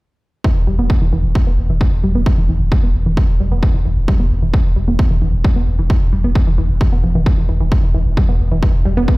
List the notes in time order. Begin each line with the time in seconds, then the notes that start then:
0.44 E3, kick
0.56 E1
0.67 E1 G3
0.79 E1 B3
0.90 kick
1.01 E1 E3
1.12 E1 E3
1.24 E1
1.35 G3, kick
1.47 E1 B3
1.58 E1
1.69 E1 E3
1.81 E3, kick
2.03 E1 G3
2.15 E1 B3
2.26 kick
2.38 E1 E3
2.49 E1 E3
2.60 E1
2.72 G3, kick
2.83 E1 B3
2.94 E1
3.06 E1 E3
3.17 E3, kick
3.29 E1
3.40 E1 G3
3.52 E1 B3
3.63 kick
3.74 E3
3.85 E1 E3
3.97 E1
4.08 G3, kick
4.20 E1 B3
4.31 E1
4.42 E1 E3
4.54 E3, kick
4.65 E1
4.76 E1 G3
4.88 E1 B3
4.99 kick
5.11 E1 E3
5.22 E1 E3
5.34 E1
5.44 G3, kick
5.56 B3
5.67 E1
5.79 E1 E3
5.90 E3, kick
6.02 E1
6.13 E1 G3
6.24 E1 B3
6.35 kick
6.47 E1 E3
6.58 E1 E3
6.70 E1
6.81 G3, kick
6.92 E1 B3
7.04 E1 F3
7.15 E1 E3
7.26 E3, kick
7.38 E3
7.49 E1 E3
7.61 E1 E3
7.72 kick
7.83 E1 E3
7.94 E1 E3
8.06 E1
8.17 G3, kick
8.29 E1 B3
8.40 E1
8.52 E1 E3
8.63 E3, kick
8.74 E1
8.85 E1 G3
8.97 E1 B3
9.08 kick